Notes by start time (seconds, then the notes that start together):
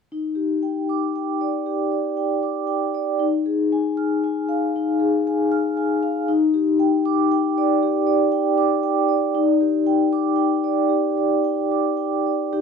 0.12 D#4
0.35 G4
0.63 G5
0.89 D6
1.16 G5
1.41 D5
1.66 G4
1.92 D5
2.17 G5
2.43 D6
2.67 G5
2.94 D5
3.19 D#4
3.46 G#4
3.72 G#5
3.97 F6
4.24 G#5
4.49 F5
4.76 D#4
5.00 G#4
5.27 G#5
5.52 F6
5.77 G#5
6.03 F5
6.28 D#4
6.54 G4
6.79 G5
7.06 D6
7.31 G5
7.58 D5
7.83 G4
8.07 D5
8.32 G5
8.58 D6
8.83 G5
9.09 D5
9.35 D#4
9.61 G4
9.87 G5
10.13 D6
10.36 G5
10.64 D5
10.89 G4
11.17 D5
11.44 G5
11.71 D6
11.97 G5
12.26 D5
12.53 D#4 G4